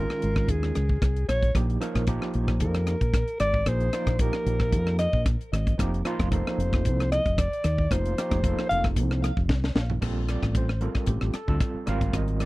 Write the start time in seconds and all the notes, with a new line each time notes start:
Already playing: D#3 G#3 C#4 F4 A#4
0.10 cross-stick
0.22 G#1, closed hi-hat
0.36 kick, cross-stick
0.48 D#2 G#4, kick, closed hi-hat
0.63 cross-stick
0.75 C#2, cross-stick, closed hi-hat
0.89 kick
1.02 C2, kick, cross-stick, closed hi-hat
1.16 closed hi-hat
1.28 A#1 C#5, cross-stick, closed hi-hat
1.43 kick, closed hi-hat
1.54 A#1 F3 A#3 D#4 G4, kick, cross-stick, closed hi-hat
1.70 closed hi-hat
1.80 F3 A#3 D#4 A#4, cross-stick, closed hi-hat
1.95 A#1, kick, cross-stick, closed hi-hat
2.07 F3 A#3 D#4 G4, kick, closed hi-hat
2.22 cross-stick
2.34 A#1, closed hi-hat
2.48 kick, cross-stick
2.60 F2 A#4, kick, closed hi-hat
2.74 cross-stick, closed hi-hat
2.87 cross-stick, closed hi-hat
3.01 A#1, kick, closed hi-hat
3.14 kick, cross-stick, closed hi-hat
3.28 closed hi-hat
3.40 G#1 D5, cross-stick, closed hi-hat
3.54 kick
3.66 A#1 F3 A#3 D#4 G#4 C5, kick, cross-stick, closed hi-hat
3.80 closed hi-hat
3.93 F3 A#3 D#4 F4, cross-stick, closed hi-hat
4.07 A#1, kick, cross-stick, closed hi-hat
4.19 F3 A#3 D#4 G4 A#4, kick, closed hi-hat
4.33 cross-stick
4.46 A#1, closed hi-hat
4.60 kick, cross-stick
4.72 F2, kick, closed hi-hat
4.87 cross-stick
4.99 D#5, cross-stick, closed hi-hat
5.13 A#1, kick
5.26 kick, cross-stick, closed hi-hat
5.41 closed hi-hat
5.53 G#1, cross-stick, closed hi-hat
5.67 kick, closed hi-hat
5.78 F1 F3 A#3 D#4 G4, kick, cross-stick, closed hi-hat
5.94 closed hi-hat
6.05 F3 A#3 D#4 F4, cross-stick, closed hi-hat
6.19 F1, kick, cross-stick, closed hi-hat
6.31 F3 A#3 D#4 A4 C5, kick, closed hi-hat
6.47 cross-stick
6.58 F1, closed hi-hat
6.73 kick, cross-stick
6.85 C2, kick, closed hi-hat
7.00 cross-stick, closed hi-hat
7.12 D#5, cross-stick, closed hi-hat
7.26 F1, kick, closed hi-hat
7.38 D5, kick, cross-stick, closed hi-hat
7.53 closed hi-hat
7.64 D#2, cross-stick, closed hi-hat
7.78 kick
7.90 F1 F3 A#3 D#4 F4 C5, kick, cross-stick, closed hi-hat
8.05 closed hi-hat
8.18 F3 A#3 D#4 G4, cross-stick, closed hi-hat
8.31 F1, kick, cross-stick, closed hi-hat
8.43 F3 A#3 D#4 A4, kick, closed hi-hat
8.59 cross-stick
8.69 F1 F5, closed hi-hat
8.84 kick, cross-stick
8.96 C2, kick, closed hi-hat
9.11 cross-stick
9.24 cross-stick, closed hi-hat
9.37 F1, kick
9.49 C2, kick, snare
9.64 snare
9.75 A#1, snare
9.90 floor tom
10.01 A#1 G3 C4 F4 A4, kick, cross-stick, crash
10.28 D5, cross-stick, closed hi-hat
10.43 A1, kick, cross-stick, closed hi-hat
10.55 C5, kick, closed hi-hat
10.69 cross-stick
10.81 G3 C4 F4 A4 A#4, closed hi-hat
10.95 muted fingered electric bass stroke, kick, cross-stick
11.07 A1 G4, kick, closed hi-hat
11.21 A1, cross-stick
11.34 A4, muted fingered electric bass stroke, cross-stick, closed hi-hat
11.47 D2 G3 C4 F4 A4, kick
11.60 kick, cross-stick, closed hi-hat
11.74 muted fingered electric bass stroke
11.86 G#1 G3 C4 F4 A#4 F5, cross-stick, closed hi-hat
12.01 kick, closed hi-hat
12.13 G#1 D#5, kick, cross-stick, closed hi-hat
12.28 closed hi-hat
12.40 D5, cross-stick, closed hi-hat